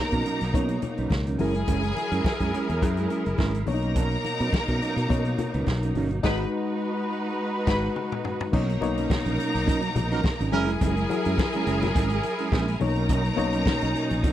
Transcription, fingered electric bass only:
0.12 B2
0.42 B1
0.54 B2
0.98 B1
1.11 C#2
1.39 F#1
1.68 F#1
2.12 F#2
2.40 F#2
2.69 E2
2.82 F#2
3.27 F#1
3.39 G#1
3.68 B1
4.40 B2
4.53 muted fingered electric bass stroke
4.68 B2
4.97 B2
5.10 B2
5.54 C#2
5.67 B1
5.95 G1
6.24 G#1
7.67 G#1
8.53 B1
8.82 B1
9.26 A#1
9.55 B1
9.95 A#1
10.40 G#1
10.52 F#1
10.68 F1
10.81 F#1
11.26 F#2
11.67 F#1
11.96 G#1
12.52 A#1
12.81 B1
13.38 B1
13.83 B1
14.11 A#1

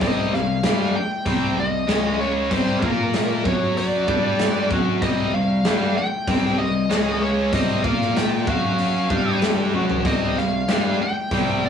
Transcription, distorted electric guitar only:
0.01 C3 G3 C4
0.32 C3 G3
0.64 G3 D4 G4
0.95 muted distorted electric guitar stroke
1.26 C3 G3 C4
1.58 C3 G3
1.88 C#3 G#3 C#4
2.51 C3 G3 C4
2.83 A#3 F4 A#4
3.46 F#3 C#4 F#4
4.08 G3 D4 G4
4.71 F#3 C#4 F#4
5.03 C3 G3 C4
5.34 C3 G3
5.66 G3 D4 G4
5.97 muted distorted electric guitar stroke
6.28 C3 G3 C4
6.60 C3 G3
6.90 C#3 G#3 C#4
7.53 C3 G3 C4
7.83 A#3 F4 A#4
8.47 F#3 C#4 F#4
9.10 G3 D4 G4
9.73 F#3 C#4 F#4
10.05 C3 G3 C4
10.36 C3 G3
10.69 G3 D4 G4
11.01 muted distorted electric guitar stroke
11.33 C3 G3 C4
11.65 C3 G3

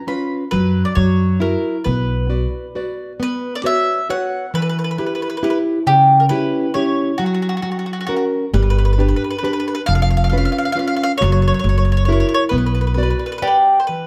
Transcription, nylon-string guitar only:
0.07 C#4 F4 B4
0.52 F#3
0.96 F#3
1.40 E4 F#4 A#4
1.86 B3
2.30 F#4 B4 D5
2.75 F#4 B4 D5
3.20 B3
3.64 F#4 B4 C#5
4.09 F#4 B4 C#5
4.54 E3
4.99 E4 G4 B4
5.43 E4 G4 B4
5.87 C#3
6.30 C#4 E4 G4
6.75 C#4 E4 G4
7.19 F#3
7.63 F#3
8.08 C#4 F#4 A#4
8.54 G3
8.98 D4 G4 B4
9.43 D4 G4 B4
9.89 F3
10.32 C#4 F4 B4
10.75 C#4 F4 B4
11.21 F#3
11.65 F#3
12.08 E4 F#4 A#4
12.51 B3
12.97 F#4 B4 D5
13.42 B4 D5 F#5
13.89 E3

